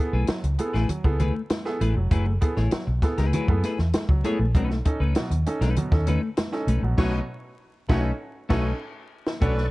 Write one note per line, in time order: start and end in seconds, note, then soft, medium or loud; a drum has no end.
0.00 0.11 B3 medium
0.00 0.11 E4 medium
0.00 0.11 G#4 medium
0.00 0.11 A4 medium
0.13 0.25 B1 medium
0.13 0.27 A3 medium
0.13 0.27 E4 medium
0.13 0.28 G#4 medium
0.13 0.28 B4 medium
0.27 0.42 F#3 medium
0.27 muted fingered electric bass stroke soft
0.27 snare loud
0.27 closed hi-hat medium
0.27 high conga medium
0.44 0.56 C#2 medium
0.44 muted clean electric guitar stroke soft
0.44 closed hi-hat medium
0.58 0.73 B3 medium
0.58 0.73 E4 medium
0.58 0.73 G#4 medium
0.58 0.73 A4 medium
0.58 closed hi-hat medium
0.58 muted conga medium
0.73 0.87 A1 medium
0.73 0.88 A3 medium
0.73 0.88 E4 medium
0.73 0.80 G#4 soft
0.73 0.89 G#4 medium
0.73 0.80 A4 soft
0.73 0.89 B4 medium
0.73 snare soft
0.89 1.03 F#3 medium
0.89 muted clean electric guitar stroke soft
0.89 closed hi-hat medium
0.89 muted conga soft
0.89 low conga medium
1.04 1.30 C#2 medium
1.04 1.18 B3 medium
1.04 1.19 E4 medium
1.04 1.18 G#4 medium
1.04 1.18 A4 medium
1.04 muted clean electric guitar stroke soft
1.04 kick medium
1.19 1.40 A3 medium
1.19 1.35 E4 medium
1.19 1.34 G#4 medium
1.19 1.26 G#4 soft
1.19 1.26 A4 soft
1.19 1.34 B4 medium
1.19 closed hi-hat medium
1.19 muted conga medium
1.19 low conga medium
1.35 muted clean electric guitar stroke soft
1.50 muted clean electric guitar stroke soft
1.50 snare loud
1.50 closed hi-hat loud
1.50 high conga medium
1.65 1.79 B3 medium
1.65 1.79 E4 medium
1.65 1.80 G#4 medium
1.65 1.80 A4 medium
1.65 snare soft
1.80 1.93 A1 medium
1.80 1.97 A3 medium
1.80 1.95 E4 medium
1.80 1.95 G#4 medium
1.80 1.94 B4 medium
1.80 closed hi-hat medium
1.80 high conga medium
1.96 2.08 F1 medium
1.96 2.09 F#3 medium
1.96 muted clean electric guitar stroke soft
2.11 2.36 F#1 loud
2.11 2.25 F#3 medium
2.11 2.32 A3 medium
2.11 2.26 E4 medium
2.11 2.26 G#4 medium
2.11 2.25 B4 medium
2.11 kick loud
2.11 closed hi-hat loud
2.26 2.33 G#4 soft
2.26 2.33 A4 soft
2.26 muted clean electric guitar stroke medium
2.41 2.55 B3 medium
2.41 2.56 E4 medium
2.41 2.56 G#4 medium
2.41 2.56 A4 medium
2.41 muted clean electric guitar stroke soft
2.41 kick medium
2.41 closed hi-hat medium
2.56 2.70 A1 medium
2.56 2.71 A3 medium
2.56 2.71 E4 medium
2.56 2.71 G#4 medium
2.56 2.72 C#5 medium
2.56 snare soft
2.71 2.86 F#3 medium
2.71 muted clean electric guitar stroke soft
2.71 snare loud
2.71 closed hi-hat medium
2.71 high conga medium
2.87 3.00 B1 medium
2.87 muted clean electric guitar stroke medium
3.02 3.17 B3 medium
3.02 3.17 E4 medium
3.02 3.17 G#4 medium
3.02 3.17 A4 medium
3.02 kick loud
3.02 snare soft
3.02 closed hi-hat medium
3.02 muted conga medium
3.18 3.31 C#2 medium
3.18 3.32 A3 medium
3.18 3.33 E4 medium
3.18 3.33 G#4 medium
3.18 3.24 G#4 soft
3.18 3.24 A4 soft
3.18 3.34 B4 medium
3.18 snare soft
3.18 closed hi-hat soft
3.33 3.48 F#3 medium
3.33 3.54 A3 medium
3.33 3.48 E4 loud
3.33 3.48 G#4 medium
3.33 3.47 B4 medium
3.33 closed hi-hat medium
3.33 muted conga soft
3.33 low conga medium
3.48 3.61 F#2 medium
3.48 3.63 B3 medium
3.48 3.63 E4 medium
3.48 3.62 G#4 medium
3.48 3.62 A4 medium
3.48 muted clean electric guitar stroke soft
3.48 kick medium
3.63 3.80 A3 medium
3.63 3.80 E4 medium
3.63 3.70 G#4 soft
3.63 3.79 G#4 medium
3.63 3.70 A4 soft
3.63 3.78 B4 medium
3.63 snare soft
3.63 closed hi-hat medium
3.63 muted conga medium
3.78 3.91 E2 medium
3.78 muted clean electric guitar stroke soft
3.78 snare soft
3.93 4.00 G#4 soft
3.93 4.00 A4 soft
3.93 muted fingered electric bass stroke soft
3.93 muted clean electric guitar stroke soft
3.93 snare loud
3.93 closed hi-hat loud
3.93 high conga medium
4.09 4.22 C#2 medium
4.09 4.23 F#3 medium
4.09 muted clean electric guitar stroke medium
4.09 kick medium
4.24 4.45 A3 medium
4.24 4.38 B3 medium
4.24 4.39 E4 medium
4.24 4.40 E4 medium
4.24 4.39 G#4 medium
4.24 4.39 G#4 loud
4.24 4.39 A4 medium
4.24 4.40 C#5 loud
4.24 closed hi-hat medium
4.24 high conga medium
4.39 4.55 A#1 medium
4.39 muted clean electric guitar stroke soft
4.55 4.80 B1 loud
4.55 4.69 B2 medium
4.55 4.69 F#3 medium
4.55 4.76 A3 medium
4.55 4.70 C#4 medium
4.55 4.70 D#4 medium
4.55 4.69 B4 medium
4.55 kick loud
4.55 closed hi-hat medium
4.70 4.76 D#4 soft
4.70 4.76 A4 soft
4.70 muted clean electric guitar stroke medium
4.70 snare soft
4.85 5.00 C#4 medium
4.85 5.00 D#4 medium
4.85 5.00 A4 medium
4.85 muted clean electric guitar stroke soft
4.85 kick medium
4.85 closed hi-hat medium
5.00 5.13 C#2 medium
5.00 5.14 A3 medium
5.00 5.14 C#4 medium
5.00 5.15 D#4 medium
5.00 5.15 B4 medium
5.15 5.30 B2 medium
5.15 5.30 F#3 medium
5.15 muted clean electric guitar stroke soft
5.15 snare loud
5.15 closed hi-hat medium
5.15 high conga medium
5.30 5.43 D#2 medium
5.30 muted clean electric guitar stroke soft
5.30 closed hi-hat medium
5.46 5.60 C#4 medium
5.46 5.60 D#4 medium
5.46 5.60 A4 medium
5.46 closed hi-hat medium
5.46 muted conga medium
5.61 5.74 B1 medium
5.61 5.75 A3 medium
5.61 5.76 C#4 medium
5.61 5.76 D#4 medium
5.61 5.68 D#4 soft
5.61 5.68 A4 soft
5.61 5.76 B4 medium
5.61 snare soft
5.61 closed hi-hat medium
5.76 5.91 B2 medium
5.76 5.91 F#3 medium
5.76 muted fingered electric bass stroke soft
5.76 muted clean electric guitar stroke soft
5.76 closed hi-hat medium
5.76 low conga medium
5.91 6.17 D#2 medium
5.91 6.06 C#4 medium
5.91 6.06 D#4 medium
5.91 6.06 A4 medium
5.91 muted clean electric guitar stroke soft
5.91 kick loud
5.91 snare soft
6.07 6.28 A3 medium
6.07 6.22 C#4 medium
6.07 6.13 D#4 soft
6.07 6.21 D#4 medium
6.07 6.13 A4 soft
6.07 6.21 B4 medium
6.07 closed hi-hat medium
6.07 muted conga medium
6.07 low conga medium
6.22 muted clean electric guitar stroke soft
6.37 muted clean electric guitar stroke soft
6.37 snare loud
6.37 closed hi-hat loud
6.37 high conga medium
6.52 6.67 C#4 medium
6.52 6.67 D#4 medium
6.52 6.67 A4 medium
6.52 snare soft
6.67 6.80 B1 medium
6.67 6.84 A3 medium
6.67 6.83 C#4 medium
6.67 6.82 D#4 medium
6.67 6.82 B4 medium
6.67 closed hi-hat medium
6.67 high conga medium
6.82 6.98 A#1 medium
6.82 6.97 B2 medium
6.82 6.97 F#3 medium
6.82 muted clean electric guitar stroke soft
6.98 7.19 B1 loud
6.98 7.19 B2 loud
6.98 7.19 F#3 loud
6.98 7.19 A3 loud
6.98 7.14 A3 loud
6.98 7.19 C#4 loud
6.98 7.19 D#4 loud
6.98 7.14 F#4 loud
6.98 7.19 B4 loud
6.98 7.14 C#5 loud
6.98 kick loud
6.98 snare loud
6.98 crash medium
7.89 8.10 B1 medium
7.89 8.05 A3 loud
7.89 8.11 A3 loud
7.89 8.10 C#4 loud
7.89 8.11 C#4 medium
7.89 8.10 D#4 medium
7.89 8.10 D#4 loud
7.89 8.05 F#4 loud
7.89 8.10 A4 medium
7.89 8.10 B4 medium
7.89 8.05 C#5 loud
7.89 kick loud
7.89 snare loud
8.49 8.71 B1 loud
8.49 8.70 A3 loud
8.49 8.66 A3 loud
8.49 8.70 C#4 loud
8.49 8.71 C#4 loud
8.49 8.71 D#4 medium
8.49 8.71 D#4 loud
8.49 8.66 F#4 medium
8.49 8.71 A4 loud
8.49 8.71 B4 medium
8.49 8.66 C#5 medium
8.49 kick loud
8.49 snare loud
8.49 crash medium
9.27 snare medium
9.40 9.67 B1 loud
9.40 9.66 F#3 medium
9.40 9.62 A3 medium
9.40 9.56 C#4 medium
9.40 9.56 D4 medium
9.40 9.66 D4 loud
9.40 9.56 D4 medium
9.40 9.55 F#4 medium
9.40 9.56 A4 loud
9.40 9.71 A4 medium
9.40 9.66 B4 loud
9.40 9.55 C#5 loud
9.40 9.71 D5 medium
9.40 9.71 C#6 medium
9.40 kick loud
9.40 closed hi-hat medium
9.56 muted clean electric guitar stroke soft
9.56 snare soft